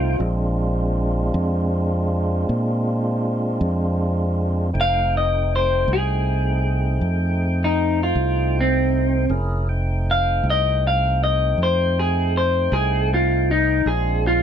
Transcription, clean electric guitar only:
Already playing: F4
4.81 F5
5.17 D#5
5.56 C5
5.93 G#4
7.64 D#4
8.03 F4
8.61 C4
10.11 F5
10.50 D#5
10.87 F5
11.24 D#5
11.63 C5
11.99 G#4
12.37 C5
12.73 G#4
13.14 F4
13.51 D#4
13.87 G#4
14.27 F4

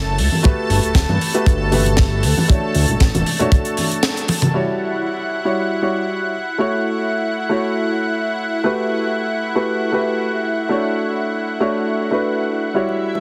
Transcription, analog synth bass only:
Already playing: F#1
0.19 C#2
0.70 G1
0.84 D1
0.95 D1
1.09 G2
1.47 G1
2.24 D2
2.75 D2
2.89 A1
3.01 A1
3.15 D1

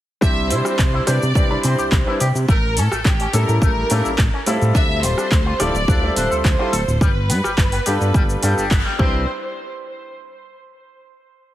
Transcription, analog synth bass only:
0.22 C2
0.51 C3
0.79 C2
1.08 C3
1.23 C3
1.35 C2
1.64 C3
1.79 C2
1.92 C2
2.21 C3
2.35 C3
2.49 A1
2.77 A2
2.92 A1
3.05 A1
3.34 A2
3.49 A2
3.62 A1
3.91 A2
4.05 A1
4.18 A1
4.47 A2
4.62 A2
4.75 D2
5.04 D1
5.31 D2
5.60 D1
5.74 D1
5.88 D2
6.16 D1
6.31 D2
6.45 D2
6.73 D1
6.88 D1
7.01 G1
7.30 G2
7.45 G1
7.58 G1
7.87 G2
8.01 G2
8.14 G1
8.43 G2
8.58 G1
8.71 G1
8.99 C2

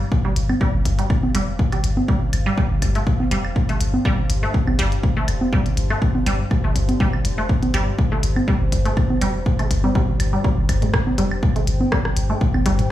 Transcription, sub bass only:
0.36 G1
0.74 G1
0.85 G1
1.35 F1
1.84 G1
2.33 G1
2.71 G1
2.82 G1
3.31 F1
3.81 G1
4.30 G1
4.67 G1
4.79 G1
5.28 F1
5.77 G1
6.26 G1
6.64 G1
6.76 G1
7.25 F1
7.74 G1
8.23 G1
8.61 G1
8.72 G1
9.22 F1
9.71 G1
10.20 G1
10.58 G1
10.69 G1
11.18 F1
11.67 G1
12.17 G1
12.54 G1
12.66 G1

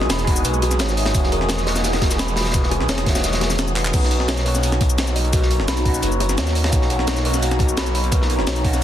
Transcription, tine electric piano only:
Already playing: G#3 A#3 D#4 F#4
0.24 G#3
0.28 D#4 F#4
1.12 G#3 A#3
1.16 D#3 F#4
1.65 G#3 A#3 D#4 F#4
2.53 G#3 A#3 D#4 F#4
3.03 G#3 A#3
3.08 D#3 F#4
3.93 C#4 D#4
3.97 F#4
4.45 A#3 C#4 D#4 F#4
5.32 A#3 C#4 D#4 F#4
5.84 C#4 D#4
5.89 F#4
6.70 A#3 C#4
6.74 D#4 F#4
7.24 A#3 C#4 D#4 F#4
8.11 A#3 C#4 D#4 F#4
8.63 A#3 C#4 D#4 F#4

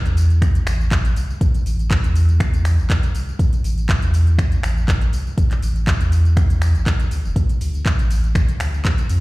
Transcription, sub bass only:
0.06 E2
0.67 A1
1.16 C2
1.41 A1
1.66 A1
2.04 E2
2.78 G1
3.15 C2
3.39 A1
3.64 A1
4.02 E2
4.63 A1
5.13 C2
5.38 A1
5.62 A1
6.00 E2
6.75 G1
7.11 D2
7.24 D1
7.36 D2
7.61 D2
7.99 A1
8.60 D2
9.10 F2

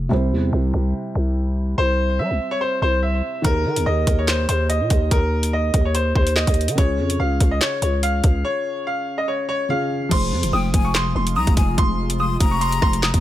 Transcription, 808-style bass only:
0.11 C2
0.32 E2
0.53 C2
0.74 C2
1.15 C2
1.78 C2
2.20 G3
2.31 C2
2.82 C2
3.45 D#2
3.65 D#3
3.76 D#2
3.86 D#2
4.07 D#2
4.49 D#2
4.81 A#2
4.90 D#2
5.11 D#2
5.74 D#2
6.15 D#2
6.47 D#2
6.68 D#3
6.78 C#2
6.99 F2
7.20 C#2
7.40 C#2
7.82 C#2
8.24 C#2
10.11 F1
10.32 F2
10.43 F1
10.53 F1
10.74 F1
11.15 F1
11.36 C2
11.47 F1
11.57 F1
11.78 F1
12.40 F1
12.82 F1
13.14 F1

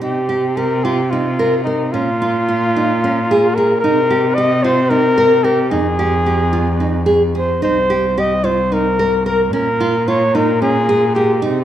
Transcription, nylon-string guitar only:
0.01 D#4
0.29 G4
0.57 G4
0.85 F4
1.13 D#4
1.39 A#4
1.67 A#4
1.94 C#4
2.22 F4
2.49 F4
2.76 D#4
3.04 C#4
3.31 G#4
3.58 G#4
3.84 D#4
4.10 G4
4.38 G4
4.64 F4
4.90 D#4
5.18 A#4
5.44 A#4
5.71 D#4
5.99 G4
6.26 G4
6.53 F4
6.80 D#4
7.06 G#4
7.35 G#4
7.62 D#4
7.90 G4
8.18 G4
8.44 F4
8.72 D#4
8.99 A#4
9.26 A#4
9.53 C#4
9.80 F4
10.08 F4
10.35 D#4
10.62 C#4
10.89 G#4
11.16 G#4
11.42 D#4

